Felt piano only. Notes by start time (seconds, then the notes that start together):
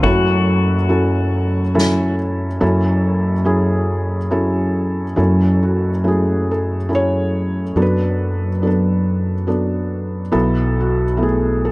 0.03 F#1 F#2 F#3 C#4 E4 F#4 A4
0.07 A3 C#4
0.89 F#3 C#4 E4 A4
1.74 F#3 C#4 E4 A4
2.60 F#1 F#2 F#3 C#4 E4 A4
3.44 F#3 C#4 E4 G#4
4.31 F#3 C#4 E4 A4
5.16 F#1 F#2 F#3 C#4 E4 A4
5.63 F#4
6.04 F#3 A3 C#4 E4
6.08 G#4
6.51 A4
6.89 F#3 C#4 E4 A4
6.95 C#5
7.76 F#1 F#2 F#3 B3 D4 A4
7.82 D4 B4
8.62 F#3 B3 D4 A4
8.67 D4 A4
9.47 F#3 B3 D4 A4
10.32 B1 B2 F#3 B3 E4 A4
10.81 F#4
11.17 F#3 A3 B3 E4
11.23 G#4
11.65 A4